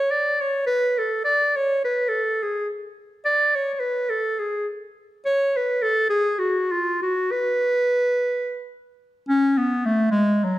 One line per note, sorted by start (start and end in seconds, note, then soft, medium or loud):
0.00 0.12 C#5 medium
0.11 0.42 D5 medium
0.41 0.66 C#5 medium
0.67 1.00 B4 medium
0.98 1.24 A4 medium
1.24 1.58 D5 medium
1.56 1.82 C#5 medium
1.85 2.10 B4 medium
2.08 2.44 A4 medium
2.42 2.69 G#4 medium
3.25 3.57 D5 medium
3.56 3.74 C#5 medium
3.74 3.81 C#5 medium
3.80 4.11 B4 medium
4.10 4.41 A4 medium
4.39 4.68 G#4 medium
5.26 5.58 C#5 loud
5.56 5.84 B4 medium
5.83 6.09 A4 medium
6.10 6.40 G#4 medium
6.39 6.73 F#4 medium
6.71 7.01 F4 medium
7.02 7.33 F#4 medium
7.31 8.72 B4 medium
9.29 9.59 C#4 loud
9.58 9.87 B3 medium
9.86 10.11 A3 medium
10.11 10.45 G#3 loud
10.44 10.59 F#3 medium